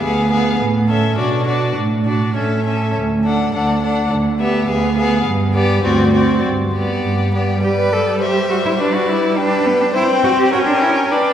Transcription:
0.02 D2 B3 G#4 F5
0.30 B3 G#4 F5
0.60 A2
0.89 C#4 A4 E5
1.18 B2 D4 F#4 D5
1.46 D4 F#4 D5
1.76 A2
2.05 D4 F#4 D5
2.36 A2 C#4 A4 E5
2.65 C#4 A4 E5
2.95 D2
3.24 D4 A4 F#5
3.53 D2 D4 A4 F#5
3.83 D4 A4 F#5
4.12 D2
4.40 B3 G4 E5
4.68 D2 B3 G#4 F5
4.97 B3 G#4 F5
5.26 G2
5.54 B3 G4 D5
5.84 D2 C4 F#4 D5
6.13 C4 F#4 D5
6.44 G2
6.73 B3 G4 D5
7.04 G2
7.34 B3 G4 D5
7.63 G3 G4 B4 D5
7.79 B4
7.93 A4
8.22 G4 C5 E5
8.50 F#4
8.65 E4
8.79 D4 B4 D5
8.94 F#4
9.08 E4
9.37 D4 B4 G5
9.66 B3
9.81 D4
9.94 C4 E4 C5 G5
10.24 F#4
10.39 G4
10.51 C#4 F#4 A#4 G5
10.67 D4
10.81 E4
11.11 D4 B4 G5

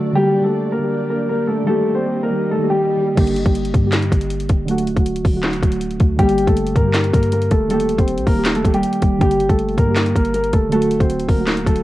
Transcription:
Already playing: D3 F#3 A3 D4 F#4 A4 D5
0.00 F#4
0.13 D3 G3 A#3 G4, swell
0.18 G4
0.41 D3 G3 A3 A#3 A4
0.46 G4
0.72 A#3 A#4
0.78 D3 G3 A#3
0.84 G4
1.10 A#3 A#4
1.29 A#3 A#4
1.47 A3 A4
1.64 D#3 G3 A3 A#3 D#4 A4 D#5
1.69 G4
1.92 D#3 G3 A#3 C4 C5
1.97 G4
2.23 A#3 A#4
2.30 D#3 G3 A#3
2.35 G4
2.51 A3 A4
2.58 D#3 G3 A#3
2.64 G4
2.70 G3 G4
2.96 D#3 G3 A#3
3.02 G4
3.15 G1 D3 G3 A#3, kick, closed hi-hat, crash
3.20 G4
3.27 closed hi-hat
3.36 closed hi-hat
3.43 G1 D3 G3 A#3, kick, closed hi-hat
3.48 G4
3.55 closed hi-hat
3.65 closed hi-hat
3.74 G2, kick, closed hi-hat
3.81 D3 G3 A#3
3.87 G4
3.92 snare, clap, closed hi-hat
4.02 closed hi-hat
4.12 G1, kick, closed hi-hat
4.21 closed hi-hat
4.30 closed hi-hat
4.40 closed hi-hat
4.49 D1, kick, closed hi-hat
4.65 D3 F#3 A3, closed hi-hat
4.71 F#4
4.78 closed hi-hat
4.87 closed hi-hat
4.94 D1 D3 F#3 A3, kick, closed hi-hat
5.00 F#4
5.06 closed hi-hat
5.16 closed hi-hat
5.25 D1, kick, open hi-hat
5.31 D3 F#3 A3
5.37 F#4
5.43 snare, clap, closed hi-hat
5.53 closed hi-hat
5.60 D1 D3 F#3 A3, kick, closed hi-hat
5.65 F#4
5.72 closed hi-hat
5.81 closed hi-hat
5.91 closed hi-hat
5.97 D2 D3 F#3 A3, kick, closed hi-hat
6.03 F#4
6.16 G1 D3 G3 A#3 G4, kick, closed hi-hat
6.22 G4
6.29 closed hi-hat
6.38 closed hi-hat
6.45 G1 D3 G3 A3 A#3 A4, kick, closed hi-hat
6.50 G4
6.57 closed hi-hat
6.67 closed hi-hat
6.76 G2 A#3 A#4, kick, closed hi-hat
6.82 D3 G3 A#3
6.88 G4
6.94 snare, clap, closed hi-hat
7.04 closed hi-hat
7.14 G2 A#3 A#4, kick, closed hi-hat
7.23 closed hi-hat
7.32 A#3 A#4, closed hi-hat
7.42 closed hi-hat
7.51 D#1 A3 A4, kick, closed hi-hat
7.68 D#3 G3 A3 A#3 A4, closed hi-hat
7.73 G4
7.80 closed hi-hat
7.89 closed hi-hat
7.96 D#1 D#3 G3 A#3 C4 C5, kick, closed hi-hat
8.01 G4
8.08 closed hi-hat
8.17 A#1, closed hi-hat
8.27 D#1 A#3 A#4, kick, open hi-hat
8.33 D#3 G3 A#3
8.39 G4
8.45 snare, clap, closed hi-hat
8.55 A3 A4, closed hi-hat
8.62 D#1 D#3 G3 A#3, kick, closed hi-hat
8.67 G4
8.74 G3 G4, closed hi-hat
8.83 closed hi-hat
8.93 closed hi-hat
9.00 D#1 D#3 G3 A#3, kick, closed hi-hat
9.06 G4
9.18 G1 D3 G3 A#3 G4, kick, closed hi-hat
9.24 G4
9.31 closed hi-hat
9.40 closed hi-hat
9.47 G1 D3 G3 A3 A#3 A4, kick, closed hi-hat
9.52 G4
9.59 closed hi-hat
9.69 closed hi-hat
9.78 G2 A#3 A#4, kick, closed hi-hat
9.85 D3 G3 A#3
9.90 G4
9.96 snare, clap, closed hi-hat
10.06 closed hi-hat
10.15 G1 A#3 A#4, kick, closed hi-hat
10.25 closed hi-hat
10.34 A#3 A#4, closed hi-hat
10.44 closed hi-hat
10.53 D1 A3 A4, kick, closed hi-hat
10.69 D3 F#3 A3 A4, closed hi-hat
10.73 A3 F#4
10.82 closed hi-hat
10.91 closed hi-hat
10.98 D1 D3 F#3 A3 C4 C5, kick, closed hi-hat
11.03 F#4
11.10 closed hi-hat
11.20 closed hi-hat
11.29 D1 A#3 A#4, kick, open hi-hat
11.35 D3 F#3 A3
11.41 F#4
11.47 snare, clap, closed hi-hat
11.57 closed hi-hat
11.64 D1 D3 F#3 A3 A4, kick, closed hi-hat
11.69 F#4
11.76 closed hi-hat

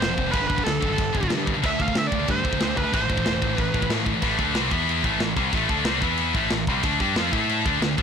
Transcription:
0.00 F1 C5, snare, china
0.09 F2 C3
0.17 F1 F2 C3, kick
0.26 F2 C3
0.32 G1 G2 D3 G3 B4, kick, china
0.41 G2 D3
0.48 G1 G2 D3 B4, kick
0.56 G2 D3, kick
0.63 D2 G2 D3 A4, snare, china
0.81 G1 G2 D3, kick
0.89 G2 D3
0.96 G1 G2 D3, kick, china
1.13 G1 G2 D3, kick
1.20 G2 D3, kick
1.29 G2 D3, snare, china
1.37 G2 D3
1.46 G2 D3, kick
1.54 G2 D3
1.62 D2 D3 A3 D4 E5, kick, china
1.71 D3 A3
1.79 D2 D3 A3 F5, kick
1.88 D3 A3, kick
1.95 D3 A3 E5, snare, china
2.07 D5
2.11 D2 D3 A3, kick
2.19 D3 A3
2.27 G2 D3 A3 C5, kick, china
2.44 D2 D3 A3, kick
2.52 D3 A3, kick
2.60 D2 D3 A3, snare, china
2.67 D3 A3
2.75 D2 D3 A3 B4, kick
2.84 D3 A3
2.92 A1 A2 E3 A3 C5, kick, china
3.00 A2 E3
3.08 A1 A2 E3, kick
3.17 A2 E3, kick
3.25 E1 A2 E3, snare, china
3.42 A1 A2 E3, kick
3.49 A2 E3
3.57 A1 A2 E3 B4, kick, china
3.74 A1 A2 E3, kick
3.82 A2 E3, kick
3.90 A2 E3, snare, china
3.97 A2 E3
4.05 A2 E3, kick
4.14 A2 E3
4.22 A1 A2 E3 A3, kick, crash
4.39 D2 D3 A3 D4, kick
4.54 C2 C3 G3 C4, snare, crash
4.71 E2 E3 B3 E4, kick
4.89 crash
5.04 A1 A2 E3 A3, kick
5.19 A1 A2 E3, snare, crash
5.36 C2 C3 G3 C4, kick
5.53 A1 A2 E3 A3, kick, crash
5.69 D2 D3 A3 D4, kick
5.85 C2 C3 G3 C4, snare, crash
6.02 E2 E3 B3 E4, kick
6.18 crash
6.34 A1 A2 E3 A3, kick
6.50 A1 A2 E3, snare, crash
6.67 C2 C3 G3 C4, kick
6.83 D2 D3 A3 D4, kick, crash
7.00 G2 G3 D4 G4, kick
7.16 F2 F3 C4 F4, snare, crash
7.33 A2 A3 E4 A4, kick
7.50 crash
7.65 D2 D3 A3 D4, kick
7.81 D2 D3 A3, snare, crash
7.97 F2 F3 C4 F4, kick

